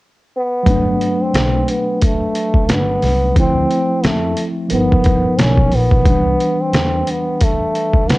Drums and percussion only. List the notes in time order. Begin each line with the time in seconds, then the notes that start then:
0.66 kick, closed hi-hat
1.01 closed hi-hat
1.34 snare, closed hi-hat
1.68 closed hi-hat
2.01 kick, closed hi-hat
2.35 closed hi-hat
2.54 kick
2.69 snare, closed hi-hat
3.02 snare, open hi-hat
3.36 kick, closed hi-hat
3.71 closed hi-hat
4.04 snare, closed hi-hat
4.37 closed hi-hat
4.70 closed hi-hat
4.92 kick
5.04 kick, closed hi-hat
5.39 snare, closed hi-hat
5.58 kick
5.72 open hi-hat
5.91 kick
6.05 kick, closed hi-hat
6.40 closed hi-hat
6.73 snare, closed hi-hat
7.07 closed hi-hat
7.40 kick, closed hi-hat
7.75 closed hi-hat
7.93 kick
8.09 snare, closed hi-hat